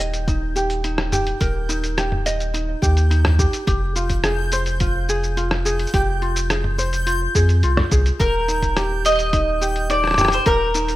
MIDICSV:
0, 0, Header, 1, 6, 480
1, 0, Start_track
1, 0, Key_signature, -3, "major"
1, 0, Tempo, 566038
1, 1195, Time_signature, 4, 2, 24, 8
1, 9293, End_track
2, 0, Start_track
2, 0, Title_t, "Synth texture"
2, 0, Program_c, 0, 99
2, 0, Note_on_c, 0, 91, 78
2, 9293, Note_off_c, 0, 91, 0
2, 9293, End_track
3, 0, Start_track
3, 0, Title_t, "Mandolin"
3, 0, Program_c, 1, 25
3, 6959, Note_on_c, 1, 70, 84
3, 7676, Note_off_c, 1, 70, 0
3, 7680, Note_on_c, 1, 75, 97
3, 8395, Note_off_c, 1, 75, 0
3, 8398, Note_on_c, 1, 74, 84
3, 8761, Note_off_c, 1, 74, 0
3, 8764, Note_on_c, 1, 72, 87
3, 8877, Note_off_c, 1, 72, 0
3, 8880, Note_on_c, 1, 70, 90
3, 9293, Note_off_c, 1, 70, 0
3, 9293, End_track
4, 0, Start_track
4, 0, Title_t, "Ukulele"
4, 0, Program_c, 2, 24
4, 0, Note_on_c, 2, 63, 53
4, 0, Note_on_c, 2, 67, 61
4, 0, Note_on_c, 2, 70, 80
4, 0, Note_on_c, 2, 75, 65
4, 226, Note_off_c, 2, 63, 0
4, 236, Note_on_c, 2, 63, 62
4, 469, Note_off_c, 2, 67, 0
4, 472, Note_on_c, 2, 67, 61
4, 704, Note_off_c, 2, 63, 0
4, 714, Note_on_c, 2, 63, 57
4, 950, Note_off_c, 2, 67, 0
4, 953, Note_on_c, 2, 67, 61
4, 1180, Note_off_c, 2, 70, 0
4, 1191, Note_on_c, 2, 70, 84
4, 1422, Note_off_c, 2, 63, 0
4, 1432, Note_on_c, 2, 63, 58
4, 1670, Note_off_c, 2, 67, 0
4, 1673, Note_on_c, 2, 67, 60
4, 1905, Note_off_c, 2, 75, 0
4, 1915, Note_on_c, 2, 75, 69
4, 2141, Note_off_c, 2, 63, 0
4, 2152, Note_on_c, 2, 63, 60
4, 2387, Note_off_c, 2, 67, 0
4, 2391, Note_on_c, 2, 67, 60
4, 2623, Note_off_c, 2, 63, 0
4, 2633, Note_on_c, 2, 63, 56
4, 2872, Note_off_c, 2, 70, 0
4, 2875, Note_off_c, 2, 67, 0
4, 2875, Note_on_c, 2, 67, 55
4, 3109, Note_off_c, 2, 63, 0
4, 3113, Note_off_c, 2, 67, 0
4, 3113, Note_on_c, 2, 67, 85
4, 3163, Note_off_c, 2, 75, 0
4, 3356, Note_on_c, 2, 65, 54
4, 3597, Note_on_c, 2, 68, 58
4, 3837, Note_on_c, 2, 72, 72
4, 4064, Note_off_c, 2, 65, 0
4, 4074, Note_on_c, 2, 65, 62
4, 4306, Note_off_c, 2, 68, 0
4, 4316, Note_on_c, 2, 68, 60
4, 4543, Note_off_c, 2, 65, 0
4, 4553, Note_on_c, 2, 65, 59
4, 4782, Note_off_c, 2, 68, 0
4, 4792, Note_on_c, 2, 68, 59
4, 5030, Note_off_c, 2, 68, 0
4, 5034, Note_off_c, 2, 67, 0
4, 5034, Note_on_c, 2, 67, 84
4, 5263, Note_off_c, 2, 65, 0
4, 5273, Note_on_c, 2, 65, 55
4, 5514, Note_on_c, 2, 68, 58
4, 5741, Note_off_c, 2, 72, 0
4, 5751, Note_on_c, 2, 72, 69
4, 5981, Note_off_c, 2, 65, 0
4, 5991, Note_on_c, 2, 65, 56
4, 6222, Note_off_c, 2, 68, 0
4, 6232, Note_on_c, 2, 68, 60
4, 6463, Note_off_c, 2, 65, 0
4, 6473, Note_on_c, 2, 65, 57
4, 6703, Note_off_c, 2, 68, 0
4, 6713, Note_on_c, 2, 68, 60
4, 6946, Note_off_c, 2, 72, 0
4, 6949, Note_on_c, 2, 70, 83
4, 7002, Note_off_c, 2, 65, 0
4, 7002, Note_off_c, 2, 68, 0
4, 7192, Note_on_c, 2, 63, 57
4, 7432, Note_off_c, 2, 67, 0
4, 7432, Note_on_c, 2, 67, 59
4, 7900, Note_off_c, 2, 63, 0
4, 7911, Note_on_c, 2, 63, 61
4, 8152, Note_off_c, 2, 67, 0
4, 8152, Note_on_c, 2, 67, 61
4, 8382, Note_off_c, 2, 63, 0
4, 8392, Note_on_c, 2, 63, 58
4, 8629, Note_off_c, 2, 67, 0
4, 8633, Note_on_c, 2, 67, 62
4, 8861, Note_off_c, 2, 70, 0
4, 8871, Note_on_c, 2, 70, 89
4, 9103, Note_off_c, 2, 63, 0
4, 9113, Note_on_c, 2, 63, 54
4, 9293, Note_off_c, 2, 63, 0
4, 9293, Note_off_c, 2, 67, 0
4, 9293, Note_off_c, 2, 70, 0
4, 9293, End_track
5, 0, Start_track
5, 0, Title_t, "Sub bass"
5, 0, Program_c, 3, 38
5, 0, Note_on_c, 3, 27, 90
5, 1127, Note_off_c, 3, 27, 0
5, 1195, Note_on_c, 3, 27, 98
5, 2328, Note_off_c, 3, 27, 0
5, 2395, Note_on_c, 3, 39, 90
5, 2928, Note_off_c, 3, 39, 0
5, 3114, Note_on_c, 3, 29, 96
5, 4967, Note_off_c, 3, 29, 0
5, 5035, Note_on_c, 3, 29, 92
5, 6168, Note_off_c, 3, 29, 0
5, 6234, Note_on_c, 3, 41, 86
5, 6469, Note_off_c, 3, 41, 0
5, 6474, Note_on_c, 3, 36, 75
5, 6630, Note_off_c, 3, 36, 0
5, 6714, Note_on_c, 3, 36, 100
5, 6870, Note_off_c, 3, 36, 0
5, 6954, Note_on_c, 3, 27, 95
5, 8807, Note_off_c, 3, 27, 0
5, 8873, Note_on_c, 3, 27, 85
5, 9293, Note_off_c, 3, 27, 0
5, 9293, End_track
6, 0, Start_track
6, 0, Title_t, "Drums"
6, 0, Note_on_c, 9, 42, 51
6, 0, Note_on_c, 9, 69, 66
6, 81, Note_off_c, 9, 42, 0
6, 83, Note_off_c, 9, 69, 0
6, 115, Note_on_c, 9, 42, 41
6, 117, Note_on_c, 9, 69, 39
6, 200, Note_off_c, 9, 42, 0
6, 202, Note_off_c, 9, 69, 0
6, 234, Note_on_c, 9, 36, 92
6, 236, Note_on_c, 9, 42, 56
6, 238, Note_on_c, 9, 69, 33
6, 319, Note_off_c, 9, 36, 0
6, 321, Note_off_c, 9, 42, 0
6, 323, Note_off_c, 9, 69, 0
6, 476, Note_on_c, 9, 69, 71
6, 560, Note_off_c, 9, 69, 0
6, 593, Note_on_c, 9, 42, 37
6, 595, Note_on_c, 9, 69, 38
6, 678, Note_off_c, 9, 42, 0
6, 680, Note_off_c, 9, 69, 0
6, 713, Note_on_c, 9, 42, 52
6, 715, Note_on_c, 9, 69, 28
6, 798, Note_off_c, 9, 42, 0
6, 800, Note_off_c, 9, 69, 0
6, 831, Note_on_c, 9, 37, 71
6, 916, Note_off_c, 9, 37, 0
6, 953, Note_on_c, 9, 45, 69
6, 955, Note_on_c, 9, 69, 67
6, 1038, Note_off_c, 9, 45, 0
6, 1040, Note_off_c, 9, 69, 0
6, 1074, Note_on_c, 9, 42, 45
6, 1159, Note_off_c, 9, 42, 0
6, 1194, Note_on_c, 9, 42, 48
6, 1195, Note_on_c, 9, 36, 107
6, 1196, Note_on_c, 9, 69, 31
6, 1279, Note_off_c, 9, 42, 0
6, 1280, Note_off_c, 9, 36, 0
6, 1281, Note_off_c, 9, 69, 0
6, 1435, Note_on_c, 9, 42, 28
6, 1437, Note_on_c, 9, 69, 69
6, 1520, Note_off_c, 9, 42, 0
6, 1522, Note_off_c, 9, 69, 0
6, 1557, Note_on_c, 9, 42, 42
6, 1559, Note_on_c, 9, 69, 40
6, 1642, Note_off_c, 9, 42, 0
6, 1644, Note_off_c, 9, 69, 0
6, 1677, Note_on_c, 9, 37, 71
6, 1677, Note_on_c, 9, 42, 51
6, 1679, Note_on_c, 9, 69, 33
6, 1762, Note_off_c, 9, 37, 0
6, 1762, Note_off_c, 9, 42, 0
6, 1764, Note_off_c, 9, 69, 0
6, 1798, Note_on_c, 9, 45, 54
6, 1882, Note_off_c, 9, 45, 0
6, 1917, Note_on_c, 9, 42, 51
6, 1919, Note_on_c, 9, 69, 76
6, 2002, Note_off_c, 9, 42, 0
6, 2004, Note_off_c, 9, 69, 0
6, 2039, Note_on_c, 9, 42, 37
6, 2041, Note_on_c, 9, 69, 37
6, 2123, Note_off_c, 9, 42, 0
6, 2125, Note_off_c, 9, 69, 0
6, 2158, Note_on_c, 9, 42, 54
6, 2160, Note_on_c, 9, 69, 34
6, 2242, Note_off_c, 9, 42, 0
6, 2244, Note_off_c, 9, 69, 0
6, 2396, Note_on_c, 9, 36, 97
6, 2400, Note_on_c, 9, 69, 78
6, 2480, Note_off_c, 9, 36, 0
6, 2485, Note_off_c, 9, 69, 0
6, 2517, Note_on_c, 9, 42, 39
6, 2519, Note_on_c, 9, 69, 40
6, 2602, Note_off_c, 9, 42, 0
6, 2604, Note_off_c, 9, 69, 0
6, 2639, Note_on_c, 9, 42, 48
6, 2641, Note_on_c, 9, 69, 31
6, 2723, Note_off_c, 9, 42, 0
6, 2726, Note_off_c, 9, 69, 0
6, 2754, Note_on_c, 9, 37, 77
6, 2754, Note_on_c, 9, 45, 67
6, 2839, Note_off_c, 9, 37, 0
6, 2839, Note_off_c, 9, 45, 0
6, 2875, Note_on_c, 9, 36, 106
6, 2877, Note_on_c, 9, 69, 72
6, 2960, Note_off_c, 9, 36, 0
6, 2962, Note_off_c, 9, 69, 0
6, 2996, Note_on_c, 9, 42, 44
6, 2998, Note_on_c, 9, 69, 43
6, 3081, Note_off_c, 9, 42, 0
6, 3083, Note_off_c, 9, 69, 0
6, 3116, Note_on_c, 9, 36, 112
6, 3117, Note_on_c, 9, 42, 49
6, 3119, Note_on_c, 9, 69, 31
6, 3201, Note_off_c, 9, 36, 0
6, 3201, Note_off_c, 9, 42, 0
6, 3203, Note_off_c, 9, 69, 0
6, 3356, Note_on_c, 9, 42, 28
6, 3358, Note_on_c, 9, 69, 72
6, 3440, Note_off_c, 9, 42, 0
6, 3442, Note_off_c, 9, 69, 0
6, 3473, Note_on_c, 9, 42, 41
6, 3475, Note_on_c, 9, 69, 40
6, 3476, Note_on_c, 9, 36, 58
6, 3558, Note_off_c, 9, 42, 0
6, 3560, Note_off_c, 9, 36, 0
6, 3560, Note_off_c, 9, 69, 0
6, 3592, Note_on_c, 9, 37, 75
6, 3592, Note_on_c, 9, 42, 50
6, 3595, Note_on_c, 9, 69, 34
6, 3677, Note_off_c, 9, 37, 0
6, 3677, Note_off_c, 9, 42, 0
6, 3679, Note_off_c, 9, 69, 0
6, 3831, Note_on_c, 9, 42, 46
6, 3833, Note_on_c, 9, 69, 74
6, 3916, Note_off_c, 9, 42, 0
6, 3918, Note_off_c, 9, 69, 0
6, 3952, Note_on_c, 9, 42, 37
6, 3954, Note_on_c, 9, 69, 39
6, 4036, Note_off_c, 9, 42, 0
6, 4038, Note_off_c, 9, 69, 0
6, 4072, Note_on_c, 9, 42, 51
6, 4074, Note_on_c, 9, 69, 35
6, 4075, Note_on_c, 9, 36, 95
6, 4157, Note_off_c, 9, 42, 0
6, 4159, Note_off_c, 9, 69, 0
6, 4160, Note_off_c, 9, 36, 0
6, 4316, Note_on_c, 9, 69, 81
6, 4400, Note_off_c, 9, 69, 0
6, 4438, Note_on_c, 9, 69, 40
6, 4523, Note_off_c, 9, 69, 0
6, 4556, Note_on_c, 9, 42, 43
6, 4558, Note_on_c, 9, 69, 32
6, 4641, Note_off_c, 9, 42, 0
6, 4643, Note_off_c, 9, 69, 0
6, 4673, Note_on_c, 9, 37, 70
6, 4758, Note_off_c, 9, 37, 0
6, 4797, Note_on_c, 9, 69, 72
6, 4881, Note_off_c, 9, 69, 0
6, 4914, Note_on_c, 9, 42, 41
6, 4976, Note_on_c, 9, 69, 44
6, 4999, Note_off_c, 9, 42, 0
6, 5035, Note_on_c, 9, 36, 109
6, 5035, Note_on_c, 9, 42, 46
6, 5037, Note_off_c, 9, 69, 0
6, 5037, Note_on_c, 9, 69, 28
6, 5120, Note_off_c, 9, 36, 0
6, 5120, Note_off_c, 9, 42, 0
6, 5122, Note_off_c, 9, 69, 0
6, 5275, Note_on_c, 9, 42, 25
6, 5360, Note_off_c, 9, 42, 0
6, 5395, Note_on_c, 9, 42, 39
6, 5397, Note_on_c, 9, 69, 78
6, 5479, Note_off_c, 9, 42, 0
6, 5481, Note_off_c, 9, 69, 0
6, 5513, Note_on_c, 9, 37, 74
6, 5513, Note_on_c, 9, 42, 51
6, 5515, Note_on_c, 9, 69, 32
6, 5598, Note_off_c, 9, 37, 0
6, 5598, Note_off_c, 9, 42, 0
6, 5600, Note_off_c, 9, 69, 0
6, 5632, Note_on_c, 9, 45, 53
6, 5717, Note_off_c, 9, 45, 0
6, 5754, Note_on_c, 9, 69, 73
6, 5839, Note_off_c, 9, 69, 0
6, 5876, Note_on_c, 9, 42, 37
6, 5878, Note_on_c, 9, 69, 42
6, 5960, Note_off_c, 9, 42, 0
6, 5963, Note_off_c, 9, 69, 0
6, 5994, Note_on_c, 9, 42, 51
6, 5996, Note_on_c, 9, 69, 33
6, 6079, Note_off_c, 9, 42, 0
6, 6081, Note_off_c, 9, 69, 0
6, 6234, Note_on_c, 9, 36, 89
6, 6234, Note_on_c, 9, 69, 77
6, 6318, Note_off_c, 9, 36, 0
6, 6319, Note_off_c, 9, 69, 0
6, 6351, Note_on_c, 9, 42, 36
6, 6354, Note_on_c, 9, 69, 38
6, 6436, Note_off_c, 9, 42, 0
6, 6438, Note_off_c, 9, 69, 0
6, 6470, Note_on_c, 9, 42, 46
6, 6473, Note_on_c, 9, 69, 30
6, 6555, Note_off_c, 9, 42, 0
6, 6557, Note_off_c, 9, 69, 0
6, 6592, Note_on_c, 9, 37, 70
6, 6592, Note_on_c, 9, 45, 71
6, 6677, Note_off_c, 9, 37, 0
6, 6677, Note_off_c, 9, 45, 0
6, 6711, Note_on_c, 9, 42, 28
6, 6713, Note_on_c, 9, 36, 105
6, 6713, Note_on_c, 9, 69, 74
6, 6796, Note_off_c, 9, 42, 0
6, 6798, Note_off_c, 9, 36, 0
6, 6798, Note_off_c, 9, 69, 0
6, 6834, Note_on_c, 9, 42, 38
6, 6836, Note_on_c, 9, 69, 42
6, 6918, Note_off_c, 9, 42, 0
6, 6921, Note_off_c, 9, 69, 0
6, 6953, Note_on_c, 9, 36, 114
6, 6955, Note_on_c, 9, 42, 45
6, 6957, Note_on_c, 9, 69, 30
6, 7038, Note_off_c, 9, 36, 0
6, 7039, Note_off_c, 9, 42, 0
6, 7041, Note_off_c, 9, 69, 0
6, 7195, Note_on_c, 9, 42, 26
6, 7197, Note_on_c, 9, 69, 63
6, 7280, Note_off_c, 9, 42, 0
6, 7282, Note_off_c, 9, 69, 0
6, 7314, Note_on_c, 9, 36, 57
6, 7314, Note_on_c, 9, 42, 36
6, 7317, Note_on_c, 9, 69, 42
6, 7398, Note_off_c, 9, 36, 0
6, 7399, Note_off_c, 9, 42, 0
6, 7401, Note_off_c, 9, 69, 0
6, 7433, Note_on_c, 9, 37, 65
6, 7433, Note_on_c, 9, 42, 46
6, 7435, Note_on_c, 9, 69, 31
6, 7518, Note_off_c, 9, 37, 0
6, 7518, Note_off_c, 9, 42, 0
6, 7520, Note_off_c, 9, 69, 0
6, 7674, Note_on_c, 9, 42, 41
6, 7676, Note_on_c, 9, 69, 72
6, 7705, Note_off_c, 9, 42, 0
6, 7705, Note_on_c, 9, 42, 34
6, 7734, Note_off_c, 9, 42, 0
6, 7734, Note_on_c, 9, 42, 28
6, 7761, Note_off_c, 9, 69, 0
6, 7765, Note_off_c, 9, 42, 0
6, 7765, Note_on_c, 9, 42, 25
6, 7792, Note_off_c, 9, 42, 0
6, 7792, Note_on_c, 9, 42, 37
6, 7794, Note_on_c, 9, 69, 38
6, 7854, Note_off_c, 9, 42, 0
6, 7854, Note_on_c, 9, 42, 13
6, 7879, Note_off_c, 9, 69, 0
6, 7882, Note_off_c, 9, 42, 0
6, 7882, Note_on_c, 9, 42, 10
6, 7912, Note_off_c, 9, 42, 0
6, 7912, Note_on_c, 9, 42, 52
6, 7913, Note_on_c, 9, 36, 98
6, 7914, Note_on_c, 9, 69, 35
6, 7997, Note_off_c, 9, 42, 0
6, 7998, Note_off_c, 9, 36, 0
6, 7999, Note_off_c, 9, 69, 0
6, 8156, Note_on_c, 9, 69, 75
6, 8241, Note_off_c, 9, 69, 0
6, 8275, Note_on_c, 9, 42, 35
6, 8360, Note_off_c, 9, 42, 0
6, 8394, Note_on_c, 9, 42, 49
6, 8396, Note_on_c, 9, 69, 28
6, 8478, Note_off_c, 9, 42, 0
6, 8481, Note_off_c, 9, 69, 0
6, 8512, Note_on_c, 9, 37, 32
6, 8543, Note_off_c, 9, 37, 0
6, 8543, Note_on_c, 9, 37, 34
6, 8573, Note_off_c, 9, 37, 0
6, 8573, Note_on_c, 9, 37, 40
6, 8601, Note_off_c, 9, 37, 0
6, 8601, Note_on_c, 9, 37, 44
6, 8631, Note_off_c, 9, 37, 0
6, 8631, Note_on_c, 9, 37, 47
6, 8631, Note_on_c, 9, 45, 68
6, 8633, Note_on_c, 9, 69, 73
6, 8660, Note_off_c, 9, 37, 0
6, 8660, Note_on_c, 9, 37, 50
6, 8690, Note_off_c, 9, 37, 0
6, 8690, Note_on_c, 9, 37, 60
6, 8716, Note_off_c, 9, 45, 0
6, 8718, Note_off_c, 9, 69, 0
6, 8721, Note_off_c, 9, 37, 0
6, 8721, Note_on_c, 9, 37, 61
6, 8752, Note_on_c, 9, 42, 42
6, 8754, Note_on_c, 9, 69, 43
6, 8806, Note_off_c, 9, 37, 0
6, 8837, Note_off_c, 9, 42, 0
6, 8839, Note_off_c, 9, 69, 0
6, 8869, Note_on_c, 9, 42, 48
6, 8871, Note_on_c, 9, 69, 27
6, 8873, Note_on_c, 9, 36, 110
6, 8954, Note_off_c, 9, 42, 0
6, 8956, Note_off_c, 9, 69, 0
6, 8958, Note_off_c, 9, 36, 0
6, 9111, Note_on_c, 9, 42, 26
6, 9113, Note_on_c, 9, 69, 69
6, 9196, Note_off_c, 9, 42, 0
6, 9198, Note_off_c, 9, 69, 0
6, 9231, Note_on_c, 9, 42, 38
6, 9233, Note_on_c, 9, 69, 39
6, 9293, Note_off_c, 9, 42, 0
6, 9293, Note_off_c, 9, 69, 0
6, 9293, End_track
0, 0, End_of_file